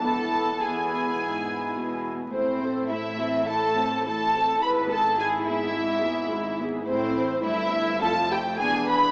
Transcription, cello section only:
X:1
M:4/4
L:1/8
Q:1/4=105
K:Am
V:1 name="Cello section" clef=bass
E,,2 E,,2 ^G,,2 B,,2 | A,,8 | ^G,,8 | A,,2 G,,2 F,,2 E,,2 |]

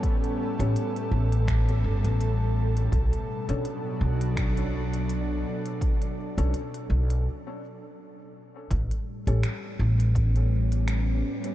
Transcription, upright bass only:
X:1
M:4/4
L:1/16
Q:"Swing 16ths" 1/4=83
K:Amix
V:1 name="Upright bass" clef=bass
z3 A,,, z2 A,,,4 G,,, A,,,4- A,,, | B,,, z2 B,,, z2 B,,,8 z2 | z3 B,,, z2 B,,,2 z8 | A,,, z2 A,,, z2 A,,,8 z2 |]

